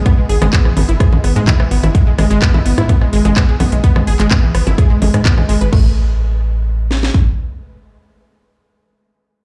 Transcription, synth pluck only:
\new Staff \with { instrumentName = "Synth pluck" } { \time 4/4 \key e \phrygian \tempo 4 = 127 b16 gis16 gis'16 gis16 b16 e16 b16 e'16 gis'16 gis16 b16 gis16 e'16 e16 b16 e'16 | gis16 gis16 gis16 gis16 b16 e'16 b16 e'16 b16 gis16 gis16 gis16 b16 gis'16 b16 gis16 | b16 gis16 gis'16 gis16 b16 e16 b16 e'16 gis'16 gis16 gis16 gis16 b16 gis16 gis16 b'16 | a8 r2. r8 |
r1 | }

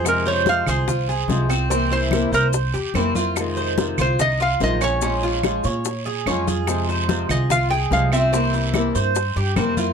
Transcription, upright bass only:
\new Staff \with { instrumentName = "Upright bass" } { \clef bass \time 4/4 \key f \minor \tempo 4 = 145 f,4. c,4. c,4~ | c,4. c,4 e,8 f,4~ | f,4. c,4. bes,,4~ | bes,,4. bes,4. f,4~ |
f,4. c,4. c,4~ | c,4. g,4 g,8 f,4 | }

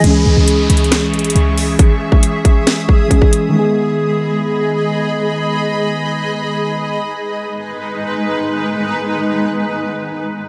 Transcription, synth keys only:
\new Staff \with { instrumentName = "Synth keys" } { \time 4/4 \key gis \minor \tempo 4 = 137 <e gis cis' gis'>1~ | <e gis cis' gis'>2. <e gis cis' gis'>4 | <dis gis b gis'>1~ | <dis gis b gis'>1 |
r1 | r1 | }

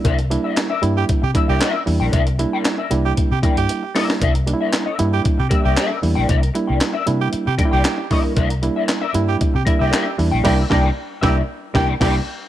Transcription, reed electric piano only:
\new Staff \with { instrumentName = "Reed electric piano" } { \time 4/4 \key c \mixolydian \tempo 4 = 115 <g bes d' e'>16 r16 <g bes d' e'>8. r16 <g bes d' e'>8. r16 <g bes d' e'>8. r16 <g bes d' e'>8~ | <g bes d' e'>16 r16 <g bes d' e'>8. r16 <g bes d' e'>8. r16 <g bes d' e'>8. r16 <g bes d' e'>8~ | <g bes d' e'>16 r16 <g bes d' ees' e'>8. r16 <g bes d' e'>8. r16 <g bes d' g'>8. r16 <g bes d' e'>8~ | <g bes d' e'>16 r16 <g bes d' e'>8. r16 <g bes d' e'>8. r16 <g bes d' ees' e'>8. r16 <g bes d' e'>8~ |
<g bes d' e'>16 r16 <g bes d' e'>8. r16 <g bes d' e'>8. r16 <g bes d' e'>8. r16 <g bes d' e'>8 | <g bes d' e'>8 <g bes d' e'>8 r8 <g bes d' e'>8 r8 <g bes d' e'>8 <g bes d' e'>8 r8 | }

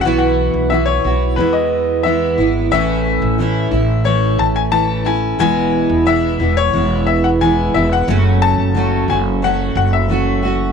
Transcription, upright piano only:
\new Staff \with { instrumentName = "Upright piano" } { \time 4/4 \key e \major \tempo 4 = 90 fis''16 fis''8. e''16 cis''8. b'16 dis''8. e''8. r16 | e''2 cis''8 a''16 gis''16 a''8 gis''8 | gis''4 e''8. cis''8. e''16 fis''16 gis''8 e''16 fis''16~ | fis''8 a''4 gis''8 fis''8 fis''16 e''4~ e''16 | }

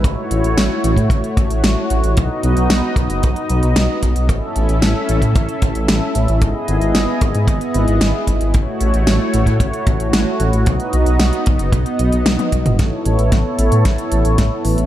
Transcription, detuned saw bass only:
\new Staff \with { instrumentName = "Detuned saw bass" } { \clef bass \time 4/4 \key a \lydian \tempo 4 = 113 a,,16 r16 a,,16 a,,16 a,,16 r16 a,,16 a,16 a,,16 r16 a,,16 a,,16 a,,16 r16 a,,16 a,,16 | b,,16 r16 b,,16 b,,16 b,,16 r16 b,,16 fis,,16 b,,16 r16 b,,16 b,,16 b,,16 r16 b,,16 b,,16 | a,,16 r16 a,,16 a,,16 a,,16 r16 a,,16 a,16 a,,16 r16 a,,16 a,,16 a,,16 r16 a,,16 a,,16 | gis,,16 r16 gis,,16 gis,,16 gis,,16 r16 gis,,16 gis,16 gis,,16 r16 gis,,16 gis,,16 gis,,16 r16 gis,,16 gis,,16 |
a,,16 r16 a,,16 a,,16 a,,16 r16 a,,16 a,16 a,,16 r16 a,,16 a,,16 a,,16 r16 a,,16 a,,16 | b,,16 r16 b,,16 b,,16 b,,16 r16 b,,16 fis,,16 b,,16 r16 b,,16 b,,16 b,,16 r16 b,,16 fis,,16 | a,,16 r16 a,,16 a,,16 a,,16 r16 a,,16 a,16 a,,16 r16 a,,16 a,,16 a,,16 r16 a,,16 a,,16 | }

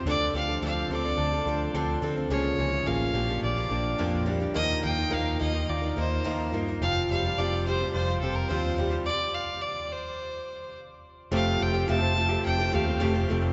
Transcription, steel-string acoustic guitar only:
\new Staff \with { instrumentName = "Steel-string acoustic guitar" } { \time 4/4 \key f \mixolydian \tempo 4 = 106 <d f c' d' a'>8 <f c' d' a'>16 <c' d' a'>16 <d f c' d' a'>8 <f c' d' a'>16 <c' d' a'>8 <c' d' a'>16 <f c' d' a'>8 <d f c' d' a'>8 <f c' d' a'>16 <c' d' a'>16 | <des f bes f' aes'>8 <f bes f' aes'>16 <bes f' aes'>16 <des f bes f' aes'>8 <f bes d' g'>16 <f bes d' g'>8 <f bes d' g'>16 <f bes d' g'>8 <bes, d f bes d' g'>8 <f bes d' g'>16 <f bes d' g'>16 | <ees f bes ees' bes'>8 <f bes ees' bes'>16 <bes ees' bes'>16 <ees f bes ees' bes'>8 <f bes ees' bes'>16 <bes ees' bes'>8 <bes ees' bes'>16 <f bes ees' bes'>8 <ees f bes ees' bes'>8 <f bes ees' bes'>16 <bes ees' bes'>16 | <f c' f' g'>8 <f c' f' g'>16 <c' f' g'>16 <f c' f' g'>8 <f c' f' g'>16 <c' f' g'>8 <c' f' g'>16 <f c' f' g'>8 <f c' f' g'>8 <f c' f' g'>16 <c' f' g'>16 |
r1 | <f a c' f' g'>8. <c' f' g'>16 <f a c' f' g'>8 <a c' f' g'>8. <c' f' g'>16 <a c' f' g'>8 <f a c' f' g'>16 <c' f' g'>16 <a c' f' g'>8 | }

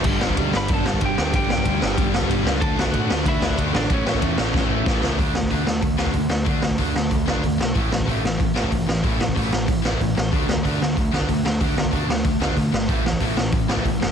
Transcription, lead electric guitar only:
\new Staff \with { instrumentName = "Lead electric guitar" } { \time 4/4 \key d \major \tempo 4 = 187 r4. <b' b''>8 <a' a''>4 <g' g''>4 | <g' g''>8 <g' g''>2 r4. | <a' a''>8 <fis' fis''>4. <e' e''>4 r8 <d' d''>8 | <cis' cis''>2.~ <cis' cis''>8 r8 |
r1 | r1 | r1 | r1 |
r1 | r1 | r1 | }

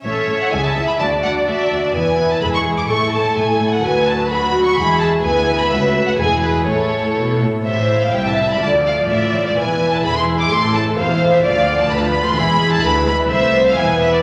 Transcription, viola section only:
\new Staff \with { instrumentName = "Viola section" } { \time 2/4 \key a \major \tempo 4 = 127 << { a'8 a'8 gis'8 gis'8 | fis'8 fis'8 fis'8 fis'8 | e'8 e'8 e'8 e'8 | e'8 e'8 e'8 e'8 |
fis'4 fis'4 | e'4 e'4 | fis'4 e'4 | e'4. r8 |
\key a \minor e'2 | f'2 | e'2~ | e'2 |
f'2 | e'2 | e'4 e'4 | } \\ { cis'8 cis'8 e'8 e'8 | d'8 d'8 d'8 d'8 | b8 b8 gis8 gis8 | a8 a8 a8 a8 |
fis2 | gis4 b4 | a4 gis4 | a4. r8 |
c16 e16 a16 c'16 c16 e16 g16 c'16 | d16 f16 a16 f16 d16 f16 a16 f16 | e16 e16 e16 e16 d16 e16 gis16 e16 | c16 e16 a16 e16 c16 e16 a16 e16 |
d16 f16 b16 f16 d16 f16 b16 f16 | e16 gis16 e16 gis16 d16 e16 gis16 e16 | a4 b4 | } >> }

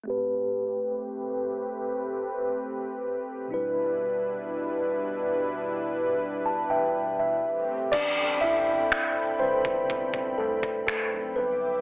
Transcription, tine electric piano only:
<<
  \new Staff \with { instrumentName = "Tine electric piano" } { \time 4/4 \key a \minor \tempo 4 = 61 r1 | r2 r8 a''16 <e'' g''>8 e''8 r16 | <d' d''>8 <e' e''>4 <c' c''>4 <a a'>8 <a a'>8 b'8 | }
  \new Staff \with { instrumentName = "Tine electric piano" } { \time 4/4 \key a \minor <a c' g' b'>2.~ <a c' g' b'>8 <b, fis g d' e' b'>8~ | <b, fis g d' e' b'>2.~ <b, fis g d' e' b'>8 r8 | r4. <c g b'>2 <d g b>8 | }
>>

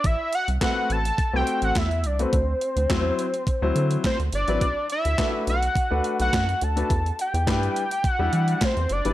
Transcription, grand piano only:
\new Staff \with { instrumentName = "Grand piano" } { \time 4/4 \key a \dorian \tempo 4 = 105 r4 <a c' fis' b'>8 r8. <a c' fis' b' c''>8. r8. <a c' fis' b'>16 | r4 <fis c' e' c''>8 r8. <fis c' e' c''>8. r8. <fis c' e' b'>16 | r4 <a d' fis' b'>8 r8. <a d' fis' b'>8. r8. <a d' fis' b'>16 | r4 <g d' e' b'>8 r8. <g d' e' g'>8. r8. <g d' e' b'>16 | }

